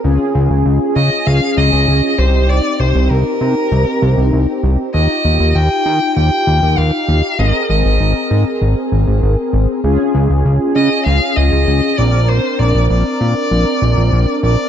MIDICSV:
0, 0, Header, 1, 4, 480
1, 0, Start_track
1, 0, Tempo, 612245
1, 34, Time_signature, 4, 2, 24, 8
1, 11516, End_track
2, 0, Start_track
2, 0, Title_t, "Violin"
2, 0, Program_c, 0, 40
2, 753, Note_on_c, 0, 75, 101
2, 994, Note_on_c, 0, 77, 112
2, 1006, Note_off_c, 0, 75, 0
2, 1230, Note_off_c, 0, 77, 0
2, 1234, Note_on_c, 0, 75, 109
2, 1714, Note_on_c, 0, 72, 94
2, 1726, Note_off_c, 0, 75, 0
2, 1954, Note_on_c, 0, 74, 102
2, 1966, Note_off_c, 0, 72, 0
2, 2195, Note_on_c, 0, 72, 89
2, 2206, Note_off_c, 0, 74, 0
2, 2434, Note_on_c, 0, 70, 86
2, 2446, Note_off_c, 0, 72, 0
2, 3634, Note_off_c, 0, 70, 0
2, 3874, Note_on_c, 0, 75, 99
2, 4354, Note_on_c, 0, 79, 105
2, 4366, Note_off_c, 0, 75, 0
2, 4830, Note_off_c, 0, 79, 0
2, 4834, Note_on_c, 0, 79, 112
2, 5314, Note_on_c, 0, 77, 97
2, 5326, Note_off_c, 0, 79, 0
2, 5794, Note_on_c, 0, 75, 96
2, 5806, Note_off_c, 0, 77, 0
2, 6029, Note_off_c, 0, 75, 0
2, 6034, Note_on_c, 0, 75, 81
2, 6723, Note_off_c, 0, 75, 0
2, 8434, Note_on_c, 0, 75, 103
2, 8657, Note_off_c, 0, 75, 0
2, 8674, Note_on_c, 0, 77, 114
2, 8913, Note_on_c, 0, 75, 106
2, 8925, Note_off_c, 0, 77, 0
2, 9393, Note_on_c, 0, 74, 95
2, 9404, Note_off_c, 0, 75, 0
2, 9632, Note_on_c, 0, 72, 95
2, 9644, Note_off_c, 0, 74, 0
2, 9873, Note_on_c, 0, 74, 90
2, 9884, Note_off_c, 0, 72, 0
2, 10108, Note_off_c, 0, 74, 0
2, 10113, Note_on_c, 0, 74, 88
2, 11282, Note_off_c, 0, 74, 0
2, 11314, Note_on_c, 0, 74, 98
2, 11516, Note_off_c, 0, 74, 0
2, 11516, End_track
3, 0, Start_track
3, 0, Title_t, "Analog polysynth"
3, 0, Program_c, 1, 90
3, 35, Note_on_c, 1, 61, 80
3, 35, Note_on_c, 1, 65, 72
3, 35, Note_on_c, 1, 68, 87
3, 1683, Note_off_c, 1, 61, 0
3, 1683, Note_off_c, 1, 65, 0
3, 1683, Note_off_c, 1, 68, 0
3, 1714, Note_on_c, 1, 60, 64
3, 1714, Note_on_c, 1, 63, 57
3, 1714, Note_on_c, 1, 67, 74
3, 3843, Note_off_c, 1, 60, 0
3, 3843, Note_off_c, 1, 63, 0
3, 3843, Note_off_c, 1, 67, 0
3, 3874, Note_on_c, 1, 63, 67
3, 3874, Note_on_c, 1, 67, 75
3, 3875, Note_on_c, 1, 65, 58
3, 5763, Note_off_c, 1, 63, 0
3, 5763, Note_off_c, 1, 65, 0
3, 5763, Note_off_c, 1, 67, 0
3, 5794, Note_on_c, 1, 60, 66
3, 5794, Note_on_c, 1, 68, 62
3, 5794, Note_on_c, 1, 70, 73
3, 7683, Note_off_c, 1, 60, 0
3, 7683, Note_off_c, 1, 68, 0
3, 7683, Note_off_c, 1, 70, 0
3, 7714, Note_on_c, 1, 61, 80
3, 7715, Note_on_c, 1, 65, 72
3, 7715, Note_on_c, 1, 68, 89
3, 9363, Note_off_c, 1, 61, 0
3, 9363, Note_off_c, 1, 65, 0
3, 9363, Note_off_c, 1, 68, 0
3, 9394, Note_on_c, 1, 60, 66
3, 9394, Note_on_c, 1, 62, 59
3, 9394, Note_on_c, 1, 70, 72
3, 11516, Note_off_c, 1, 60, 0
3, 11516, Note_off_c, 1, 62, 0
3, 11516, Note_off_c, 1, 70, 0
3, 11516, End_track
4, 0, Start_track
4, 0, Title_t, "Analog synth bass"
4, 0, Program_c, 2, 38
4, 35, Note_on_c, 2, 37, 106
4, 143, Note_off_c, 2, 37, 0
4, 274, Note_on_c, 2, 37, 107
4, 382, Note_off_c, 2, 37, 0
4, 394, Note_on_c, 2, 37, 90
4, 502, Note_off_c, 2, 37, 0
4, 514, Note_on_c, 2, 37, 100
4, 622, Note_off_c, 2, 37, 0
4, 754, Note_on_c, 2, 49, 101
4, 862, Note_off_c, 2, 49, 0
4, 994, Note_on_c, 2, 37, 100
4, 1102, Note_off_c, 2, 37, 0
4, 1233, Note_on_c, 2, 37, 103
4, 1342, Note_off_c, 2, 37, 0
4, 1354, Note_on_c, 2, 37, 94
4, 1462, Note_off_c, 2, 37, 0
4, 1474, Note_on_c, 2, 37, 100
4, 1582, Note_off_c, 2, 37, 0
4, 1714, Note_on_c, 2, 36, 101
4, 2043, Note_off_c, 2, 36, 0
4, 2194, Note_on_c, 2, 36, 91
4, 2302, Note_off_c, 2, 36, 0
4, 2314, Note_on_c, 2, 36, 100
4, 2422, Note_off_c, 2, 36, 0
4, 2434, Note_on_c, 2, 36, 96
4, 2542, Note_off_c, 2, 36, 0
4, 2674, Note_on_c, 2, 48, 100
4, 2782, Note_off_c, 2, 48, 0
4, 2914, Note_on_c, 2, 36, 99
4, 3022, Note_off_c, 2, 36, 0
4, 3153, Note_on_c, 2, 36, 100
4, 3262, Note_off_c, 2, 36, 0
4, 3273, Note_on_c, 2, 36, 94
4, 3382, Note_off_c, 2, 36, 0
4, 3394, Note_on_c, 2, 36, 96
4, 3502, Note_off_c, 2, 36, 0
4, 3633, Note_on_c, 2, 36, 101
4, 3742, Note_off_c, 2, 36, 0
4, 3874, Note_on_c, 2, 39, 106
4, 3982, Note_off_c, 2, 39, 0
4, 4114, Note_on_c, 2, 39, 95
4, 4222, Note_off_c, 2, 39, 0
4, 4234, Note_on_c, 2, 39, 91
4, 4342, Note_off_c, 2, 39, 0
4, 4353, Note_on_c, 2, 39, 103
4, 4462, Note_off_c, 2, 39, 0
4, 4594, Note_on_c, 2, 51, 99
4, 4702, Note_off_c, 2, 51, 0
4, 4834, Note_on_c, 2, 39, 101
4, 4942, Note_off_c, 2, 39, 0
4, 5074, Note_on_c, 2, 39, 100
4, 5182, Note_off_c, 2, 39, 0
4, 5194, Note_on_c, 2, 39, 93
4, 5302, Note_off_c, 2, 39, 0
4, 5314, Note_on_c, 2, 39, 105
4, 5422, Note_off_c, 2, 39, 0
4, 5555, Note_on_c, 2, 39, 93
4, 5663, Note_off_c, 2, 39, 0
4, 5794, Note_on_c, 2, 32, 108
4, 5902, Note_off_c, 2, 32, 0
4, 6034, Note_on_c, 2, 32, 94
4, 6142, Note_off_c, 2, 32, 0
4, 6155, Note_on_c, 2, 32, 94
4, 6263, Note_off_c, 2, 32, 0
4, 6274, Note_on_c, 2, 32, 99
4, 6382, Note_off_c, 2, 32, 0
4, 6515, Note_on_c, 2, 44, 102
4, 6623, Note_off_c, 2, 44, 0
4, 6755, Note_on_c, 2, 32, 96
4, 6863, Note_off_c, 2, 32, 0
4, 6995, Note_on_c, 2, 32, 92
4, 7103, Note_off_c, 2, 32, 0
4, 7115, Note_on_c, 2, 32, 93
4, 7223, Note_off_c, 2, 32, 0
4, 7234, Note_on_c, 2, 32, 101
4, 7342, Note_off_c, 2, 32, 0
4, 7474, Note_on_c, 2, 32, 106
4, 7582, Note_off_c, 2, 32, 0
4, 7715, Note_on_c, 2, 37, 98
4, 7823, Note_off_c, 2, 37, 0
4, 7955, Note_on_c, 2, 37, 102
4, 8063, Note_off_c, 2, 37, 0
4, 8075, Note_on_c, 2, 37, 93
4, 8183, Note_off_c, 2, 37, 0
4, 8194, Note_on_c, 2, 37, 99
4, 8302, Note_off_c, 2, 37, 0
4, 8435, Note_on_c, 2, 49, 100
4, 8543, Note_off_c, 2, 49, 0
4, 8675, Note_on_c, 2, 37, 98
4, 8783, Note_off_c, 2, 37, 0
4, 8915, Note_on_c, 2, 37, 103
4, 9023, Note_off_c, 2, 37, 0
4, 9035, Note_on_c, 2, 37, 91
4, 9143, Note_off_c, 2, 37, 0
4, 9154, Note_on_c, 2, 37, 98
4, 9262, Note_off_c, 2, 37, 0
4, 9395, Note_on_c, 2, 34, 101
4, 9723, Note_off_c, 2, 34, 0
4, 9875, Note_on_c, 2, 34, 90
4, 9983, Note_off_c, 2, 34, 0
4, 9995, Note_on_c, 2, 34, 90
4, 10103, Note_off_c, 2, 34, 0
4, 10115, Note_on_c, 2, 34, 93
4, 10223, Note_off_c, 2, 34, 0
4, 10355, Note_on_c, 2, 46, 93
4, 10463, Note_off_c, 2, 46, 0
4, 10595, Note_on_c, 2, 34, 97
4, 10703, Note_off_c, 2, 34, 0
4, 10835, Note_on_c, 2, 34, 100
4, 10943, Note_off_c, 2, 34, 0
4, 10955, Note_on_c, 2, 34, 94
4, 11063, Note_off_c, 2, 34, 0
4, 11075, Note_on_c, 2, 34, 110
4, 11183, Note_off_c, 2, 34, 0
4, 11315, Note_on_c, 2, 34, 98
4, 11423, Note_off_c, 2, 34, 0
4, 11516, End_track
0, 0, End_of_file